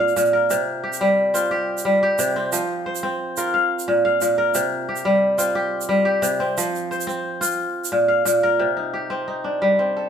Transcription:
0.00 0.15 A#2 medium
0.00 0.79 C4 medium
0.00 0.84 F4 medium
0.00 0.33 A#4 medium
0.00 0.99 F5 medium
0.08 shaker soft
0.16 0.56 A#2 medium
0.16 shaker soft
0.33 1.60 A#4 medium
0.50 2.18 C3 medium
0.50 shaker medium
0.83 1.51 G4 medium
0.93 shaker soft
1.01 1.84 G3 medium
1.34 2.36 C4 medium
1.34 2.86 F4 medium
1.34 shaker medium
1.51 2.02 G4 medium
1.78 shaker soft
1.85 2.58 G3 medium
2.03 3.44 G4 medium
2.19 2.58 C3 medium
2.19 shaker medium
2.36 3.03 C4 medium
2.52 3.59 F3 medium
2.52 shaker medium
2.86 4.05 C5 medium
2.95 shaker soft
3.03 4.83 C4 medium
3.37 4.89 F4 medium
3.37 4.37 A#4 medium
3.37 shaker medium
3.54 4.04 F5 medium
3.79 shaker soft
3.88 4.20 A#2 medium
4.05 5.05 F5 medium
4.21 4.60 A#2 medium
4.21 shaker medium
4.38 5.65 A#4 medium
4.54 6.21 C3 medium
4.54 shaker medium
4.89 5.55 G4 medium
4.96 shaker soft
5.05 5.88 G3 medium
5.38 6.40 C4 medium
5.38 6.89 F4 medium
5.38 shaker medium
5.55 6.05 G4 medium
5.81 shaker soft
5.89 6.62 G3 medium
6.05 7.46 G4 medium
6.22 6.62 C3 medium
6.22 shaker medium
6.40 7.07 C4 medium
6.58 7.64 F3 medium
6.58 shaker medium
6.75 shaker soft
6.91 8.10 C5 medium
6.91 shaker soft
7.01 shaker soft
7.07 8.87 C4 medium
7.07 shaker soft
7.41 8.92 F4 medium
7.41 shaker medium
7.51 shaker soft
7.84 shaker medium
7.92 8.24 A#2 medium
8.08 9.08 F5 medium
8.25 8.65 A#2 medium
8.25 shaker medium
8.43 9.71 A#4 medium
8.59 10.09 C3 medium
8.77 9.27 D#4 soft
8.94 10.09 G4 medium
9.10 9.79 C4 medium
9.28 10.09 D#4 medium
9.44 10.09 D4 soft
9.62 10.09 G3 medium
9.79 10.09 C4 medium
9.97 10.09 A4 soft

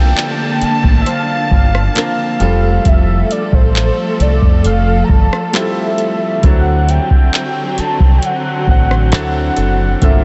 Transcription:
0.00 2.37 D3 medium
0.00 0.55 F3 medium
0.00 0.56 A#3 medium
0.00 2.37 A#3 medium
0.00 0.56 C4 medium
0.00 0.59 D4 medium
0.00 0.56 A4 medium
0.00 0.65 G5 loud
0.00 2.38 A5 medium
0.00 downlifter medium
0.17 1.45 D5 medium
0.17 clap loud
0.62 1.00 A5 loud
0.62 muted fingered electric bass stroke soft
0.62 closed hi-hat medium
0.84 1.02 A1 medium
0.84 kick medium
1.02 1.10 E5 medium
1.06 2.34 C5 medium
1.06 1.52 F5 loud
1.06 closed hi-hat medium
1.51 1.87 G1 medium
1.51 1.94 F5 loud
1.51 kick medium
1.75 cross-stick loud
1.95 2.40 F3 medium
1.95 2.40 A#3 medium
1.95 2.39 C4 medium
1.95 2.41 D4 medium
1.95 2.41 A#4 medium
1.95 2.89 F5 loud
1.95 clap loud
1.95 closed hi-hat medium
2.40 2.77 F1 loud
2.40 6.39 F3 medium
2.40 3.83 G3 medium
2.40 6.39 A3 medium
2.40 3.84 C4 medium
2.40 3.84 F4 medium
2.40 6.39 A4 medium
2.40 3.85 A4 medium
2.40 closed hi-hat medium
2.85 3.22 F1 loud
2.85 3.33 E5 loud
2.85 kick loud
2.85 closed hi-hat medium
3.31 3.56 D5 loud
3.31 closed hi-hat medium
3.52 3.89 A1 medium
3.52 4.23 C5 loud
3.52 kick loud
3.76 clap loud
4.20 4.38 C2 medium
4.20 4.65 D5 loud
4.20 closed hi-hat medium
4.42 4.66 F2 medium
4.42 kick loud
4.64 5.01 F1 medium
4.64 5.06 F5 loud
4.64 closed hi-hat medium
5.04 5.12 A#5 medium
5.09 5.27 G1 medium
5.09 5.57 A5 loud
5.09 kick medium
5.33 cross-stick loud
5.53 6.18 G3 medium
5.53 6.18 C4 medium
5.53 6.18 E4 medium
5.53 6.19 F4 medium
5.53 5.61 G4 medium
5.53 6.47 E5 loud
5.53 clap loud
5.53 closed hi-hat medium
5.62 6.22 A4 medium
5.98 closed hi-hat medium
6.43 6.98 D2 loud
6.43 9.98 D3 medium
6.43 7.72 F#3 medium
6.43 9.98 F#3 medium
6.43 9.98 C4 medium
6.43 7.72 C4 medium
6.43 7.72 D4 medium
6.43 7.72 E4 medium
6.43 7.73 A4 medium
6.43 6.92 F#5 loud
6.43 kick loud
6.43 closed hi-hat medium
6.89 7.81 G5 loud
6.89 closed hi-hat medium
7.10 muted fingered electric bass stroke soft
7.10 kick loud
7.34 clap loud
7.78 8.20 A5 loud
7.78 muted fingered electric bass stroke medium
7.78 closed hi-hat medium
8.00 8.18 C2 medium
8.00 kick medium
8.18 8.27 G5 medium
8.22 8.69 F#5 loud
8.22 closed hi-hat medium
8.67 9.13 A1 loud
8.67 9.10 F#5 loud
8.67 kick medium
8.91 cross-stick medium
9.11 9.49 D2 loud
9.11 9.76 F#3 medium
9.11 9.76 C4 medium
9.11 9.77 D4 medium
9.11 9.77 E4 medium
9.11 9.77 A4 medium
9.11 10.06 F#5 loud
9.11 clap loud
9.11 closed hi-hat medium
9.56 9.93 F#1 medium
9.56 10.24 A4 medium
9.56 closed hi-hat medium
10.01 10.24 G1 loud
10.01 10.24 C3 medium
10.01 10.24 G3 medium
10.01 10.08 A3 medium
10.01 10.24 A#3 medium
10.01 10.24 C4 medium
10.01 10.24 D4 medium
10.01 10.24 F4 medium
10.01 10.24 A4 medium
10.01 10.24 E5 loud
10.01 kick loud
10.01 closed hi-hat medium
10.08 10.24 A#3 medium

